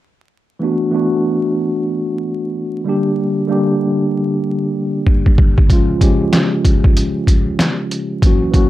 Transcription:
0.59 tine electric piano E3 A3 B3 D4
0.64 tine electric piano F#4
0.91 tine electric piano E3 A3 B3 D4
0.95 tine electric piano F#4
2.84 tine electric piano D3 G3 A#3 D4
2.89 tine electric piano G4
3.47 tine electric piano D3 G3 A#3 D4
3.52 tine electric piano G4
5.07 kick
5.26 kick
5.38 kick
5.58 kick
5.68 tine electric piano C#3 F3 G#3 C#4, kick, closed hi-hat
5.73 tine electric piano F4
5.98 tine electric piano C#3 F3 G#3 C#4, kick, closed hi-hat
6.03 tine electric piano G4
6.33 snare, closed hi-hat
6.65 kick, closed hi-hat
6.84 kick
6.97 closed hi-hat
7.27 kick, closed hi-hat
7.59 snare, closed hi-hat
7.91 closed hi-hat
8.22 tine electric piano E3 F#3 A#3 C#4, kick, closed hi-hat
8.27 tine electric piano F#4
8.51 tine electric piano E3 F#3 A#3 C#4, kick, closed hi-hat
8.55 tine electric piano F#4

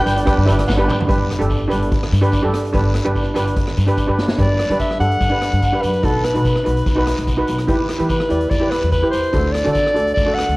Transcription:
Already playing: steel pan D4 G4, soprano saxophone G5
0.06 upright bass G1, steel pan B4, closed hi-hat, short guiro
0.17 steel pan D5, closed hi-hat
0.26 steel pan D4 G4 B4 D5, kick, cross-stick, closed hi-hat, long guiro
0.38 upright bass G2
0.45 upright bass G1, steel pan D4 G4 B4 E5, closed hi-hat, short guiro
0.59 cross-stick, closed hi-hat
0.67 upright bass G1, steel pan F#5, kick, snare, short guiro
0.77 steel pan D4 G4 B4
0.88 steel pan G5, mid tom, short guiro
1.00 floor tom
1.07 upright bass G1, steel pan D4 G4 B4, kick, closed hi-hat, long guiro
1.31 cross-stick, closed hi-hat
1.39 upright bass G1, steel pan D4 G4 A4, closed hi-hat
1.50 kick, closed hi-hat, short guiro
1.68 steel pan D4 G4 B4, closed hi-hat, short guiro
1.73 upright bass G1
1.82 closed hi-hat
1.92 kick, closed hi-hat, long guiro
2.03 cross-stick
2.12 upright bass G2, closed hi-hat, short guiro
2.21 steel pan D4 G4 B4, closed hi-hat
2.32 kick, closed hi-hat, short guiro
2.42 upright bass G2, steel pan D4 G4 A4
2.54 cross-stick, closed hi-hat
2.65 closed hi-hat
2.73 upright bass G1, steel pan D4 G4 B4, kick, closed hi-hat, long guiro
2.94 cross-stick, closed hi-hat
3.04 upright bass G1, steel pan D4 G4 B4, closed hi-hat
3.15 kick, closed hi-hat, short guiro
3.35 upright bass G1, steel pan D4 G4 B4, cross-stick, closed hi-hat, short guiro
3.47 closed hi-hat
3.56 kick, closed hi-hat, long guiro
3.67 cross-stick
3.77 upright bass G2, closed hi-hat, short guiro
3.86 steel pan D4 G4 B4, closed hi-hat
3.97 kick, closed hi-hat, short guiro
4.07 upright bass G2, steel pan D4 G4 B4
4.19 snare
4.28 snare
4.38 upright bass G2, steel pan D4 G4 B4, soprano saxophone D5, kick, closed hi-hat, long guiro
4.59 cross-stick, closed hi-hat
4.70 upright bass G3, steel pan D4 G4 B4, closed hi-hat
4.80 soprano saxophone E5, kick, closed hi-hat, short guiro
4.91 cross-stick
5.00 upright bass G2, steel pan D4 G4 A4, soprano saxophone F#5, closed hi-hat
5.11 closed hi-hat
5.21 upright bass G2, kick, closed hi-hat, short guiro, long guiro
5.30 steel pan D4 G4 B4
5.42 cross-stick, closed hi-hat
5.53 upright bass G2, closed hi-hat
5.62 kick, closed hi-hat, short guiro
5.72 steel pan D4 G4 B4
5.82 upright bass F#2, soprano saxophone B4, closed hi-hat, short guiro
5.94 closed hi-hat
6.03 upright bass B1, steel pan D#4 F#4 B4, soprano saxophone A4, kick, closed hi-hat, long guiro
6.24 soprano saxophone B4, cross-stick, closed hi-hat
6.34 upright bass B2, steel pan D#4 F#4 B4, closed hi-hat
6.45 kick, closed hi-hat, short guiro
6.56 cross-stick
6.64 upright bass B1, steel pan D#4 F#4 B4, closed hi-hat
6.77 closed hi-hat
6.86 upright bass B1, kick, closed hi-hat, short guiro, long guiro
6.95 steel pan D#4 F#4 B4
7.07 cross-stick, closed hi-hat
7.17 upright bass B1, closed hi-hat
7.27 kick, closed hi-hat, short guiro
7.37 steel pan D#4 F#4 B4
7.47 upright bass B1, closed hi-hat, short guiro
7.59 cross-stick, closed hi-hat
7.67 upright bass E2, steel pan E4 G4 B4, kick, closed hi-hat, long guiro
7.89 cross-stick, closed hi-hat
7.99 upright bass E3, steel pan E4 G4 B4, closed hi-hat
8.09 soprano saxophone B4, kick, closed hi-hat, short guiro
8.20 cross-stick
8.29 upright bass E2, steel pan E4 G4 D5, closed hi-hat
8.41 closed hi-hat
8.50 upright bass E2, soprano saxophone D5, kick, closed hi-hat, short guiro, long guiro
8.60 steel pan E4 G4 B4
8.70 soprano saxophone B4, cross-stick, closed hi-hat
8.82 upright bass E2, closed hi-hat
8.92 soprano saxophone B4, kick, closed hi-hat, short guiro
9.02 steel pan E4 G4 B4
9.11 upright bass E2, soprano saxophone C5, closed hi-hat, short guiro
9.23 closed hi-hat
9.33 upright bass D2, steel pan D4 F#4 A4, kick, closed hi-hat, long guiro
9.52 soprano saxophone D5, cross-stick, closed hi-hat
9.64 upright bass D3, steel pan D4 F#4 A4, closed hi-hat
9.72 soprano saxophone D5, kick, closed hi-hat, short guiro
9.86 cross-stick
9.94 upright bass D2, steel pan D4 F#4 A4, closed hi-hat
10.07 closed hi-hat
10.14 upright bass D2, soprano saxophone D5, kick, closed hi-hat, short guiro, long guiro
10.26 steel pan D4 F#4 A4
10.34 soprano saxophone F#5
10.39 cross-stick, closed hi-hat
10.49 upright bass D2, closed hi-hat

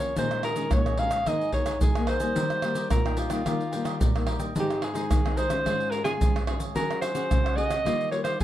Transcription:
Already playing: nylon-string guitar F2 F3 A#3 C#4, alto saxophone C#5
0.00 cavaquinho A#4 C#5 F5, pandeiro, shaker
0.16 nylon-string guitar A#2 D#3 G#3 C#4, cavaquinho D#4 G#4 C#5 D#5, alto saxophone C5, pandeiro, shaker, surdo
0.31 pandeiro, tamborim, shaker
0.42 cavaquinho D#4 G#4 C#5 D#5, alto saxophone A#4, pandeiro, tamborim
0.55 nylon-string guitar D#3 G#3 C#4, cavaquinho D#4 G#4 C#5 D#5, pandeiro, shaker
0.71 nylon-string guitar A#2, alto saxophone C#5, pandeiro, tamborim, shaker, surdo
0.86 cavaquinho G#4 C#5 D#5, pandeiro, tamborim, shaker
0.97 nylon-string guitar D#3 G#3 C#4, cavaquinho D#4 G#4 C#5 D#5, alto saxophone F5, pandeiro
1.10 cavaquinho G#4 C#5 D#5, pandeiro, tamborim, shaker
1.26 nylon-string guitar G#2 D#3 A#3 D#4, cavaquinho G#4 A#4 D#5 G#5, alto saxophone D#5, pandeiro, tamborim, shaker, surdo
1.41 pandeiro, shaker
1.52 nylon-string guitar D#3 A#3 D#4, cavaquinho G#4 A#4 D#5 G#5, alto saxophone C#5, pandeiro, surdo
1.66 cavaquinho G#4 A#4 D#5 G#5, pandeiro, tamborim, shaker
1.81 nylon-string guitar D#3, cavaquinho G#4 A#4 D#5 G#5, alto saxophone G#4, pandeiro, shaker, surdo
1.95 nylon-string guitar D#3 A#3 D#4, pandeiro, tamborim, shaker
2.07 cavaquinho G#4 A#4 D#5 G#5, alto saxophone C5, pandeiro, tamborim
2.20 nylon-string guitar G3 A#3 D#4, cavaquinho A#4 D#5 G#5, pandeiro, shaker
2.35 nylon-string guitar D#3, cavaquinho G4 A#4 D#5 G5, pandeiro, shaker, surdo
2.50 pandeiro, tamborim, shaker
2.62 nylon-string guitar G3 A#3 D#4, cavaquinho G4 A#4 D#5 G5, pandeiro, tamborim, shaker
2.75 cavaquinho G4 A#4 D#5 G5, pandeiro, shaker
2.90 nylon-string guitar A#2, alto saxophone A#4, pandeiro, tamborim, shaker, surdo
3.06 nylon-string guitar G3 A#3 D#4, cavaquinho A#4 D#5 G5, pandeiro, tamborim, shaker
3.17 alto saxophone F4, cavaquinho G4 A#4 D#5 G5, pandeiro, shaker
3.30 nylon-string guitar G3 A#3 D#4, cavaquinho A#4 D#5 G5, pandeiro, tamborim, shaker
3.46 nylon-string guitar D#3 G3 A#3 D#4, cavaquinho G4 A#4 D#5 G5, pandeiro, tamborim, shaker, surdo
3.61 pandeiro, shaker
3.72 nylon-string guitar G3 A#3 D#4, cavaquinho G4 A#4 D#5 G5, pandeiro, shaker
3.85 cavaquinho G4 A#4 D#5 G5, pandeiro, tamborim, shaker
3.99 nylon-string guitar A#2, cavaquinho G4 A#4 D#5 G5, pandeiro, shaker, surdo
4.16 nylon-string guitar G3 A#3 D#4, pandeiro, tamborim, shaker
4.26 cavaquinho G4 A#4 D#5 G5, pandeiro, tamborim
4.39 cavaquinho A#4 D#5 G5, pandeiro, shaker
4.55 nylon-string guitar G#2 G#3 C4 D#4, cavaquinho D#4 G#4 C5 D#5, pandeiro, shaker, surdo
4.59 alto saxophone G4
4.70 pandeiro, tamborim, shaker
4.81 cavaquinho D#4 G#4 C5 D#5, alto saxophone G#4, pandeiro, tamborim
4.94 nylon-string guitar G#3 C4 D#4, cavaquinho D#4 G#4 C5 D#5, pandeiro, shaker
5.11 nylon-string guitar D#3, pandeiro, tamborim, shaker, surdo
5.25 nylon-string guitar G#3 C4 D#4, cavaquinho G#4 C5 D#5, pandeiro, tamborim, shaker
5.37 cavaquinho D#4 G#4 C5 D#5, alto saxophone C5, pandeiro, shaker
5.49 nylon-string guitar G#3 C#4 F4, cavaquinho G#4 D#5, pandeiro, tamborim, shaker
5.65 nylon-string guitar G#2, cavaquinho F4 G#4 C#5 F5, pandeiro, tamborim, shaker, surdo
5.80 pandeiro, shaker
5.91 cavaquinho F4 G#4 C#5 F5, alto saxophone A#4, pandeiro
6.04 nylon-string guitar G#3 C#4 F4, cavaquinho F4 G#4 C#5 F5, alto saxophone G#4, pandeiro, tamborim, shaker
6.20 nylon-string guitar G#2, cavaquinho F4 G#4 C#5 F5, pandeiro, shaker, surdo
6.36 pandeiro, tamborim, shaker
6.47 nylon-string guitar G#3 C#4 F4, cavaquinho F4 G#4 C#5 F5, pandeiro, tamborim
6.59 cavaquinho G#4 C#5 F5, pandeiro, shaker
6.75 nylon-string guitar F#3 C#4 F#4 G#4, cavaquinho F#4 G#4 C#5 F#5, alto saxophone A#4, pandeiro, shaker, surdo
6.91 pandeiro, tamborim, shaker
7.01 cavaquinho F#4 G#4 C#5 F#5, alto saxophone C5, pandeiro, tamborim, shaker
7.14 nylon-string guitar C#4 F#4 G#4, cavaquinho F#4 G#4 C#5 F#5, pandeiro, shaker
7.30 nylon-string guitar C#3, pandeiro, tamborim, shaker, surdo
7.44 cavaquinho G#4 C#5 F#5, pandeiro, tamborim, shaker
7.55 nylon-string guitar C#4 F#4 G#4, cavaquinho F#4 G#4 C#5 F#5, alto saxophone D#5, pandeiro
7.68 cavaquinho G#4 C#5 F#5, pandeiro, tamborim, shaker
7.84 nylon-string guitar D#3 G3 A#3 F4, cavaquinho F4 G4 D#5 F5, pandeiro, tamborim, shaker, surdo
8.01 pandeiro, shaker
8.11 nylon-string guitar G3 A#3 F4, cavaquinho F4 G4 D#5 F5, alto saxophone C#5, pandeiro
8.24 cavaquinho F4 G4 D#5 F5, alto saxophone C5, pandeiro, tamborim, shaker
8.39 nylon-string guitar A#2, cavaquinho F4 G4, pandeiro, shaker, surdo

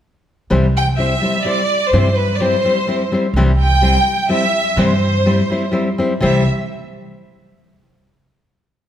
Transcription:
0.50 upright bass C2, nylon-string guitar C3 E3 G3 C4 E4 C5
0.77 violin section G5
0.97 nylon-string guitar G3 C4 E4 C5, violin section E5
1.21 nylon-string guitar G3 C4 E4 C5
1.43 nylon-string guitar G3 C4 E4 C5, violin section D5
1.89 violin section C5
1.93 upright bass G2, nylon-string guitar C3 E3 G3 C4 E4 C5
2.15 violin section B4
2.35 violin section D5
2.39 nylon-string guitar G3 C4 E4 C5, violin section C5
2.65 nylon-string guitar G3 C4 E4 C5
2.87 nylon-string guitar G3 C4 E4 C5
3.12 nylon-string guitar G3 C4 E4 C5
3.34 upright bass C2, nylon-string guitar C3 E3 G3 C4 E4 C5
3.61 violin section G5
3.82 nylon-string guitar G3 C4 E4 C5
4.29 nylon-string guitar G3 C4 E4 C5, violin section E5
4.76 upright bass G2, nylon-string guitar C3 E3 G3 C4 E4 C5
4.80 violin section C5
5.26 nylon-string guitar G3 C4 E4 C5
5.50 nylon-string guitar G3 C4 E4 C5
5.72 nylon-string guitar G3 C4 E4 C5
5.98 nylon-string guitar G3 C4 E4 C5
6.20 upright bass C2, nylon-string guitar C3 E3 G3 C4 E4 C5, violin section E5

